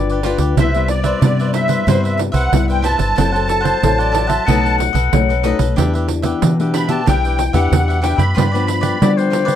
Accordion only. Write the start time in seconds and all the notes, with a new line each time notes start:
0.58 E5
0.89 D5
1.55 E5
1.89 C5
2.06 E5
2.35 F#5
2.71 G5
2.85 A5
6.74 B5
6.89 A5
7.08 G5
7.54 F#5
8.03 G5
8.18 B5